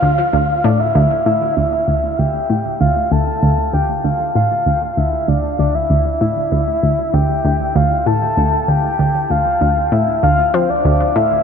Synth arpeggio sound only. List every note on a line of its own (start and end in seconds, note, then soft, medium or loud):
0.02 0.21 D2 medium
0.33 0.61 D2 medium
0.64 0.92 A2 loud
0.95 1.06 D2 loud
1.26 1.44 A2 medium
1.57 1.85 D2 medium
1.88 2.15 D2 medium
2.19 2.46 D2 medium
2.50 2.68 A2 medium
2.81 2.99 D2 medium
3.12 3.30 D2 medium
3.43 3.70 D2 medium
3.74 4.01 D2 medium
4.04 4.32 D2 medium
4.35 4.54 A2 medium
4.66 4.85 D2 medium
4.97 5.16 D2 medium
5.28 5.56 D2 medium
5.59 5.87 D2 medium
5.90 6.18 D2 medium
6.21 6.39 A2 medium
6.52 6.70 D2 medium
6.83 7.01 D2 medium
7.14 7.41 D2 medium
7.45 7.72 D2 medium
7.76 8.03 D2 medium
8.06 8.25 A2 medium
8.37 8.56 D2 medium
8.68 8.87 D2 medium
8.99 9.27 D2 medium
9.30 9.58 D2 medium
9.61 9.89 D2 medium
9.92 10.10 A2 medium
10.23 10.41 D2 medium
10.54 10.65 F3 medium
10.85 11.03 D2 medium
11.16 11.43 A2 medium